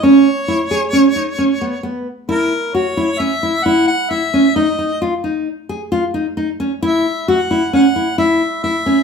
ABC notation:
X:1
M:5/4
L:1/8
Q:1/4=133
K:F#mix
V:1 name="Harmonica"
c8 z2 | A2 c2 e2 f f e2 | d2 z8 | e2 f2 f2 e2 e2 |]
V:2 name="Nylon-string guitar"
C2 E G C D C B, B,2 | E2 F E C E E2 E C | D D ^E D2 G E D D C | E2 F E C E E2 E C |]